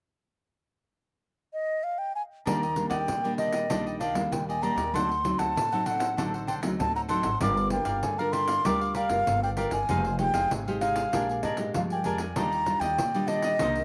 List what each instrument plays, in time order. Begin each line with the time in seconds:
1.53 flute D#5
1.84 flute F5
1.98 flute G5
2.15 flute G#5
2.46 upright bass D#2, nylon-string guitar D#3 G3 A#3 D4, cavaquinho D4 G4 D5 D#5, flute A#5, pandeiro
2.62 cavaquinho G4 D5 D#5, pandeiro
2.76 nylon-string guitar G3 A#3 D4, muted cavaquinho stroke, pandeiro
2.89 upright bass D#2, cavaquinho G4 D5 D#5, flute G5, pandeiro
3.08 nylon-string guitar A#2, upright bass D#3, pandeiro
3.24 nylon-string guitar G3 A#3 D4, cavaquinho G4 D5 D#5, pandeiro
3.38 cavaquinho D4 G4 D5 D#5, flute D#5, pandeiro
3.53 cavaquinho G4 D5 D#5, pandeiro
3.70 upright bass A#1, nylon-string guitar D#3 G3 A#3 D4, cavaquinho D4 G4 D5 D#5, pandeiro
3.86 cavaquinho G4 D5 D#5, pandeiro
3.99 cavaquinho D4 G4 D5 D#5, flute F5, pandeiro
4.14 upright bass D#2, nylon-string guitar G3 A#3 D4, muted cavaquinho stroke, pandeiro
4.32 upright bass D#2, nylon-string guitar A#2, flute G5, pandeiro
4.49 cavaquinho G4 D5 D#5, flute G#5, pandeiro
4.62 nylon-string guitar G3 A#3 D4, cavaquinho D4 G4 D5 D#5, flute A#5, pandeiro
4.76 upright bass D#2, cavaquinho G4 D5 D#5, pandeiro
4.94 upright bass D2, nylon-string guitar D3 F#3 C4 D#4, cavaquinho D4 A4 C5 F#5, flute C6, pandeiro
5.09 cavaquinho A4 C5 F#5, pandeiro
5.24 nylon-string guitar F#3 C4 D#4, muted cavaquinho stroke, pandeiro
5.38 upright bass D2, cavaquinho A4 C5 F#5, flute A5, pandeiro
5.56 nylon-string guitar A2, upright bass D3, pandeiro
5.72 nylon-string guitar F#3 C4 D#4, cavaquinho A4 C5 F#5, pandeiro
5.86 cavaquinho D4 A4 C5 F#5, flute F#5, pandeiro
6.00 cavaquinho A4 C5 F#5, pandeiro
6.17 upright bass A1, nylon-string guitar D3 F#3 C4 D#4, cavaquinho D4 A4 C5 F#5, pandeiro
6.34 cavaquinho A4 C5 F#5, pandeiro
6.47 cavaquinho D4 A4 C5 F#5, flute G5, pandeiro
6.62 upright bass D2, nylon-string guitar F#3 C4 D#4, muted cavaquinho stroke, pandeiro
6.79 upright bass D2, nylon-string guitar A2, flute A5, pandeiro
6.96 cavaquinho A4 C5 F#5, flute A#5, pandeiro
7.08 nylon-string guitar F#3 C4 D#4, cavaquinho D4 A4 C5 F#5, flute C6, pandeiro
7.23 upright bass G#1, cavaquinho A4 C5 F#5, pandeiro
7.41 upright bass G1, nylon-string guitar G3 D4 F4 A#4, cavaquinho G4 A#4 D5 F5, flute D6, pandeiro
7.57 cavaquinho A#4 D5 F5, pandeiro
7.70 nylon-string guitar D4 F4 A#4, flute G5, muted cavaquinho stroke, pandeiro
7.85 upright bass G1, cavaquinho A#4 D5 F5, pandeiro
8.03 upright bass G2, nylon-string guitar D3, flute G#5, pandeiro
8.18 nylon-string guitar D4 F4 A#4, cavaquinho A#4 D5 F5, flute A#5, pandeiro
8.32 cavaquinho G4 A#4 D5 F5, flute C6, pandeiro
8.48 cavaquinho A#4 D5 F5, pandeiro
8.65 upright bass D2, nylon-string guitar G3 D4 F4 A#4, cavaquinho G4 A#4 D5 F5, flute D6, pandeiro
8.81 cavaquinho A#4 D5 F5, pandeiro
8.95 cavaquinho G4 A#4 D5 F5, flute F5, pandeiro
9.09 upright bass G1, nylon-string guitar D4 F4 A#4, muted cavaquinho stroke, pandeiro
9.27 upright bass G1, nylon-string guitar D3, pandeiro
9.43 cavaquinho A#4 D5 F5, flute G5, pandeiro
9.57 nylon-string guitar D4 F4 A#4, cavaquinho G4 A#4 D5 F5, pandeiro
9.71 upright bass G1, cavaquinho A#4 D5 F5, flute G#5, pandeiro
9.89 upright bass F1, nylon-string guitar F3 G#3 D#4 G4, cavaquinho D#4 G#4 C5 F5, pandeiro
10.05 cavaquinho C5 F5, pandeiro
10.19 nylon-string guitar G#3 D#4 G4, flute G5, muted cavaquinho stroke, pandeiro
10.34 upright bass F1, cavaquinho G#4 C5 F5, pandeiro
10.51 upright bass G#1, nylon-string guitar C3, pandeiro
10.68 nylon-string guitar G#3 D#4 G4, cavaquinho G#4 C5 F5, pandeiro
10.81 cavaquinho D#4 G#4 C5 F5, flute F5, pandeiro
10.96 cavaquinho G#4 C5 F5, pandeiro
11.13 upright bass A#1, nylon-string guitar A#2 G#3 D4 G4, cavaquinho D4 A#4 D5 G#5, pandeiro
11.29 cavaquinho A#4 D5 G#5, pandeiro
11.43 upright bass G#2, cavaquinho D4 A#4 D5 G#5, flute D#5, pandeiro
11.57 nylon-string guitar G#3 D4 G4, muted cavaquinho stroke, pandeiro
11.74 upright bass G2, nylon-string guitar F3, flute F5, pandeiro
11.90 cavaquinho A#4 D5 G#5, flute G5, pandeiro
12.04 upright bass F2, nylon-string guitar G#3 D4 G4, cavaquinho D4 A#4 D5 G#5, flute G#5, pandeiro
12.18 cavaquinho A#4 D5 G#5, pandeiro
12.36 upright bass D#2, nylon-string guitar D#3 G3 D4 F4, cavaquinho D4 G4 D5 D#5, flute A#5, pandeiro
12.53 cavaquinho G4 D5 D#5, pandeiro
12.66 nylon-string guitar G3 D4 F4, muted cavaquinho stroke, pandeiro
12.80 upright bass D#2, cavaquinho G4 D5 D#5, flute G5, pandeiro
12.98 nylon-string guitar A#2, upright bass D#3, pandeiro
13.14 nylon-string guitar G3 D4 F4, cavaquinho G4 D5 D#5, pandeiro
13.28 cavaquinho D4 G4 D5 D#5, flute D#5, pandeiro
13.42 cavaquinho G4 D5 D#5, pandeiro
13.59 upright bass C2, nylon-string guitar C3 D#3 A#3 D4, cavaquinho D#4 A#4 C5 D#5, pandeiro
13.76 cavaquinho A#4 C5 D#5, pandeiro